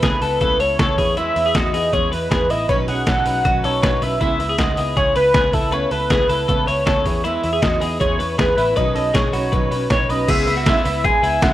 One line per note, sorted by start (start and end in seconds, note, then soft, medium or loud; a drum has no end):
0.00 0.19 C#2 loud
0.00 0.22 A3 medium
0.00 0.22 B3 medium
0.00 0.22 G#4 medium
0.00 0.62 B4 medium
0.00 kick loud
0.00 snare loud
0.00 closed hi-hat medium
0.04 0.22 E4 medium
0.04 0.20 A4 medium
0.21 0.38 C#2 medium
0.21 0.40 B3 soft
0.21 0.41 E4 medium
0.21 0.41 A4 soft
0.21 0.40 A4 medium
0.21 open hi-hat medium
0.40 0.57 C#2 loud
0.40 0.60 C#3 medium
0.40 0.60 A3 medium
0.40 0.60 B3 medium
0.40 0.60 E4 medium
0.40 0.60 A4 medium
0.40 0.58 A4 medium
0.40 kick loud
0.40 closed hi-hat medium
0.59 0.76 C#2 loud
0.59 0.78 B3 soft
0.59 0.79 E4 soft
0.59 0.79 A4 medium
0.59 0.79 C#5 medium
0.59 1.17 C#5 loud
0.59 open hi-hat medium
0.79 0.98 C#2 loud
0.79 0.98 A3 medium
0.79 0.98 B3 medium
0.79 0.98 E4 medium
0.79 0.98 A4 medium
0.79 0.97 A4 medium
0.79 kick loud
0.79 snare loud
0.79 closed hi-hat medium
0.98 1.29 E2 medium
0.98 1.17 B3 soft
0.98 1.18 E4 soft
0.98 1.17 G#4 medium
0.98 1.17 B4 soft
0.98 kick loud
0.98 open hi-hat medium
1.17 1.36 E3 medium
1.17 1.36 G#3 medium
1.17 1.37 B3 medium
1.17 1.44 E4 medium
1.17 1.36 E4 medium
1.17 1.34 B4 medium
1.17 1.57 E5 loud
1.17 closed hi-hat medium
1.35 1.52 E2 medium
1.35 1.54 B3 soft
1.35 1.55 E4 medium
1.35 1.55 B4 soft
1.35 open hi-hat medium
1.46 1.55 G#4 medium
1.54 1.71 E2 medium
1.54 1.74 G#3 medium
1.54 1.74 B3 medium
1.54 1.74 E4 medium
1.54 1.74 F#4 medium
1.54 1.72 B4 medium
1.54 1.95 D#5 loud
1.54 kick loud
1.54 snare loud
1.54 closed hi-hat medium
1.73 1.90 E2 medium
1.73 1.93 B3 soft
1.73 1.93 E4 soft
1.73 1.92 G#4 medium
1.73 1.93 B4 medium
1.73 open hi-hat medium
1.93 2.09 E2 loud
1.93 2.12 E3 medium
1.93 2.12 G#3 medium
1.93 2.12 B3 medium
1.93 2.13 E4 medium
1.93 2.11 G#4 medium
1.93 2.11 B4 medium
1.93 2.14 C#5 loud
1.93 kick loud
1.93 closed hi-hat medium
2.12 2.27 E2 loud
2.12 2.30 B3 soft
2.12 2.31 E4 soft
2.12 2.30 B4 medium
2.12 2.31 B4 soft
2.12 2.52 B4 medium
2.12 open hi-hat medium
2.30 2.47 E2 medium
2.30 2.49 G#3 medium
2.30 2.50 B3 medium
2.30 2.50 E4 medium
2.30 2.50 G#4 medium
2.30 2.48 B4 medium
2.30 kick loud
2.30 snare loud
2.30 closed hi-hat medium
2.49 2.65 A1 medium
2.49 2.70 B3 soft
2.49 2.69 E4 medium
2.49 2.69 E4 soft
2.49 2.69 B4 soft
2.49 2.69 D#5 loud
2.49 open hi-hat medium
2.68 2.85 B1 medium
2.68 2.88 B2 medium
2.68 2.88 D#3 medium
2.68 2.88 F#3 medium
2.68 2.89 C#4 medium
2.68 2.87 D#4 medium
2.68 2.88 B4 medium
2.68 2.86 B4 medium
2.68 2.78 C#5 loud
2.68 kick loud
2.68 closed hi-hat medium
2.87 3.04 B1 loud
2.87 3.05 F#3 soft
2.87 3.06 C#4 soft
2.87 3.07 D#4 soft
2.87 3.07 G#4 medium
2.87 3.07 B4 medium
2.87 3.66 F#5 loud
2.87 open hi-hat medium
3.06 3.22 B1 loud
3.06 3.26 F#3 medium
3.06 3.26 C#4 medium
3.06 3.26 D#4 medium
3.06 3.26 A4 medium
3.06 3.24 B4 medium
3.06 kick loud
3.06 snare loud
3.06 closed hi-hat medium
3.26 3.41 B1 medium
3.26 3.44 F#3 soft
3.26 3.45 C#4 soft
3.26 3.45 D#4 soft
3.26 3.45 G#4 medium
3.26 3.45 B4 medium
3.26 open hi-hat medium
3.44 3.61 B1 medium
3.44 3.64 B2 medium
3.44 3.64 D#3 medium
3.44 3.64 F#3 medium
3.44 3.64 C#4 medium
3.44 3.63 D#4 medium
3.44 3.64 F#4 medium
3.44 3.62 B4 medium
3.44 kick loud
3.44 closed hi-hat medium
3.63 3.80 B1 medium
3.63 3.81 F#3 soft
3.63 3.83 C#4 soft
3.63 3.83 D#4 medium
3.63 3.82 A4 medium
3.63 3.82 B4 soft
3.63 4.04 C#5 loud
3.63 open hi-hat medium
3.83 3.99 B1 medium
3.83 4.02 F#3 soft
3.83 4.02 C#4 medium
3.83 4.02 D#4 medium
3.83 4.01 B4 medium
3.83 4.00 B4 medium
3.83 kick loud
3.83 snare loud
3.83 closed hi-hat medium
4.02 4.18 B1 medium
4.02 4.21 F#3 soft
4.02 4.22 C#4 soft
4.02 4.21 D#4 soft
4.02 4.21 B4 soft
4.02 4.20 B4 medium
4.02 4.61 E5 loud
4.02 open hi-hat medium
4.21 4.37 C#2 medium
4.21 4.40 C#3 medium
4.21 4.40 G#3 medium
4.21 4.40 B3 medium
4.21 4.48 E4 medium
4.21 4.40 E4 medium
4.21 4.38 B4 medium
4.21 kick loud
4.21 closed hi-hat medium
4.39 4.55 C#2 loud
4.39 4.58 B3 soft
4.39 4.59 E4 soft
4.39 4.58 B4 soft
4.39 open hi-hat medium
4.49 4.58 G#4 medium
4.58 4.74 C#2 medium
4.58 4.77 G#3 medium
4.58 4.78 B3 medium
4.58 4.77 E4 medium
4.58 4.78 F#4 medium
4.58 4.76 B4 medium
4.58 4.96 D#5 loud
4.58 kick loud
4.58 snare loud
4.58 closed hi-hat medium
4.77 4.94 C#2 medium
4.77 4.96 B3 soft
4.77 4.96 E4 medium
4.77 4.96 G#4 medium
4.77 4.96 B4 medium
4.77 open hi-hat medium
4.96 5.12 C#2 medium
4.96 5.15 C#3 medium
4.96 5.15 G#3 medium
4.96 5.16 B3 medium
4.96 5.16 E4 medium
4.96 5.15 G#4 medium
4.96 5.14 B4 medium
4.96 5.15 C#5 medium
4.96 kick loud
4.96 closed hi-hat medium
5.15 5.31 C#2 medium
5.15 5.34 B3 soft
5.15 5.35 E4 soft
5.15 5.34 B4 soft
5.15 5.34 B4 medium
5.15 5.55 B4 loud
5.15 open hi-hat medium
5.34 5.50 C#2 medium
5.34 5.53 G#3 medium
5.34 5.54 B3 medium
5.34 5.53 E4 medium
5.34 5.53 G#4 medium
5.34 5.51 B4 medium
5.34 kick loud
5.34 snare loud
5.34 closed hi-hat medium
5.52 5.85 C#2 medium
5.52 5.71 B3 soft
5.52 5.72 E4 medium
5.52 5.72 E4 soft
5.52 5.74 A4 medium
5.52 5.72 B4 soft
5.52 kick loud
5.52 open hi-hat medium
5.71 5.91 C#3 medium
5.71 5.91 A3 medium
5.71 5.91 B3 medium
5.71 5.91 E4 medium
5.71 5.91 B4 loud
5.71 5.89 B4 medium
5.71 5.91 C#5 loud
5.71 closed hi-hat medium
5.90 6.07 C#2 medium
5.90 6.09 B3 soft
5.90 6.10 E4 soft
5.90 6.10 A4 medium
5.90 6.10 B4 medium
5.90 6.69 B4 loud
5.90 open hi-hat medium
6.09 6.26 C#2 loud
6.09 6.29 A3 medium
6.09 6.29 B3 medium
6.09 6.29 E4 medium
6.09 6.29 G#4 medium
6.09 6.27 B4 medium
6.09 kick loud
6.09 snare loud
6.09 closed hi-hat medium
6.28 6.45 C#2 loud
6.28 6.47 B3 soft
6.28 6.48 E4 soft
6.28 6.47 A4 medium
6.28 6.48 B4 medium
6.28 open hi-hat medium
6.47 6.64 C#2 loud
6.47 6.67 C#3 medium
6.47 6.67 A3 medium
6.47 6.68 B3 medium
6.47 6.66 E4 medium
6.47 6.67 A4 medium
6.47 6.65 B4 medium
6.47 kick loud
6.47 closed hi-hat medium
6.66 6.83 C#2 loud
6.66 6.85 B3 soft
6.66 6.87 E4 medium
6.66 6.86 B4 medium
6.66 6.86 C#5 medium
6.66 7.26 C#5 medium
6.66 open hi-hat medium
6.85 7.06 C#2 medium
6.85 7.05 A3 medium
6.85 7.05 B3 medium
6.85 7.05 E4 medium
6.85 7.05 A4 medium
6.85 7.03 B4 medium
6.85 kick loud
6.85 snare loud
6.85 closed hi-hat medium
7.04 7.37 E2 medium
7.04 7.24 B3 soft
7.04 7.25 E4 soft
7.04 7.24 G#4 medium
7.04 7.24 B4 medium
7.04 kick medium
7.04 open hi-hat medium
7.24 7.43 E3 medium
7.24 7.44 G#3 medium
7.24 7.44 B3 medium
7.24 7.51 E4 medium
7.24 7.43 E4 medium
7.24 7.41 B4 medium
7.24 7.63 E5 loud
7.24 closed hi-hat medium
7.43 7.59 E2 loud
7.43 7.61 B3 soft
7.43 7.63 E4 medium
7.43 7.62 B4 soft
7.43 open hi-hat medium
7.53 7.63 G#4 medium
7.61 7.78 E2 loud
7.61 7.81 G#3 medium
7.61 7.82 B3 medium
7.61 7.81 E4 medium
7.61 7.81 F#4 medium
7.61 7.79 B4 medium
7.61 7.99 D#5 loud
7.61 kick loud
7.61 snare loud
7.61 closed hi-hat medium
7.80 7.97 E2 medium
7.80 7.99 B3 soft
7.80 8.00 E4 soft
7.80 7.99 G#4 medium
7.80 8.00 B4 medium
7.80 open hi-hat medium
7.99 8.16 E2 medium
7.99 8.19 E3 medium
7.99 8.19 G#3 medium
7.99 8.19 B3 medium
7.99 8.19 E4 medium
7.99 8.19 G#4 medium
7.99 8.17 B4 medium
7.99 8.36 C#5 loud
7.99 kick loud
7.99 closed hi-hat medium
8.18 8.35 E2 loud
8.18 8.37 B3 soft
8.18 8.38 E4 soft
8.18 8.38 B4 medium
8.18 open hi-hat medium
8.37 8.54 E2 medium
8.37 8.57 G#3 medium
8.37 8.57 B3 medium
8.37 8.56 E4 medium
8.37 8.57 G#4 medium
8.37 8.78 B4 loud
8.37 8.54 B4 medium
8.37 kick loud
8.37 snare loud
8.37 closed hi-hat medium
8.55 8.73 A1 medium
8.55 8.77 B3 soft
8.55 8.76 E4 medium
8.55 8.77 E4 soft
8.55 8.76 B4 soft
8.55 open hi-hat medium
8.76 8.92 B1 medium
8.76 8.95 B2 medium
8.76 8.95 D#3 medium
8.76 8.96 F#3 medium
8.76 8.95 C#4 medium
8.76 8.94 D#4 medium
8.76 8.95 B4 loud
8.76 8.93 B4 medium
8.76 8.95 D#5 loud
8.76 kick medium
8.76 closed hi-hat medium
8.94 9.11 B1 loud
8.94 9.12 F#3 soft
8.94 9.13 C#4 soft
8.94 9.14 D#4 soft
8.94 9.13 A4 medium
8.94 9.14 B4 soft
8.94 9.16 D#5 medium
8.94 open hi-hat medium
9.13 9.30 B1 medium
9.13 9.33 F#3 medium
9.13 9.34 C#4 medium
9.13 9.33 D#4 medium
9.13 9.33 G#4 medium
9.13 9.31 B4 medium
9.13 9.33 C#5 medium
9.13 kick loud
9.13 snare loud
9.13 closed hi-hat medium
9.32 9.49 B1 medium
9.32 9.52 F#3 soft
9.32 9.52 C#4 soft
9.32 9.53 D#4 medium
9.32 9.52 F#4 medium
9.32 9.52 B4 medium
9.32 9.87 C#5 medium
9.32 open hi-hat medium
9.52 9.68 B1 medium
9.52 9.71 B2 medium
9.52 9.71 D#3 medium
9.52 9.72 F#3 medium
9.52 9.72 C#4 medium
9.52 9.71 D#4 medium
9.52 9.70 B4 medium
9.52 kick loud
9.52 closed hi-hat medium
9.71 9.87 B1 medium
9.71 9.89 F#3 soft
9.71 9.90 C#4 soft
9.71 9.91 D#4 soft
9.71 9.90 B4 medium
9.71 open hi-hat medium
9.90 10.06 B1 loud
9.90 10.09 F#3 medium
9.90 10.10 C#4 medium
9.90 10.09 D#4 medium
9.90 10.08 B4 medium
9.90 10.09 C#5 medium
9.90 10.12 C#5 medium
9.90 kick loud
9.90 snare loud
9.90 closed hi-hat medium
10.09 10.25 B1 loud
10.09 10.28 F#3 soft
10.09 10.29 C#4 soft
10.09 10.29 D#4 soft
10.09 10.28 B4 medium
10.09 10.31 D#5 loud
10.09 open hi-hat medium
10.28 10.44 C#2 loud
10.28 10.47 C#3 medium
10.28 10.47 G#3 medium
10.28 10.48 B3 medium
10.28 10.47 E4 medium
10.28 10.55 G#4 loud
10.28 10.45 B4 medium
10.28 10.48 E5 loud
10.28 kick loud
10.28 closed hi-hat medium
10.28 crash medium
10.46 10.71 C#2 loud
10.46 10.65 B3 soft
10.46 10.66 E4 medium
10.46 10.66 B4 medium
10.46 11.07 E5 loud
10.46 open hi-hat medium
10.57 10.66 F#4 medium
10.66 10.85 C#3 medium
10.66 10.85 G#3 medium
10.66 10.85 B3 medium
10.66 11.02 E4 medium
10.66 10.85 E4 medium
10.66 10.83 B4 medium
10.66 kick loud
10.66 snare loud
10.66 closed hi-hat medium
10.84 11.09 C#2 loud
10.84 11.04 B3 soft
10.84 11.05 E4 medium
10.84 11.04 B4 medium
10.84 open hi-hat medium
11.04 11.23 G#3 medium
11.04 11.24 B3 soft
11.04 11.23 E4 medium
11.04 11.23 G#4 medium
11.04 11.21 B4 medium
11.04 11.44 G#5 loud
11.04 kick loud
11.04 closed hi-hat medium
11.22 11.39 C#2 loud
11.22 11.41 B3 medium
11.22 11.53 E4 medium
11.22 11.42 E4 medium
11.22 11.42 B4 medium
11.22 open hi-hat medium
11.41 11.53 C#2 loud
11.41 11.53 C#3 medium
11.41 11.53 G#3 medium
11.41 11.53 B3 medium
11.41 11.53 E4 medium
11.41 11.53 B4 medium
11.41 11.53 F#5 loud
11.41 kick loud
11.41 snare loud
11.41 closed hi-hat medium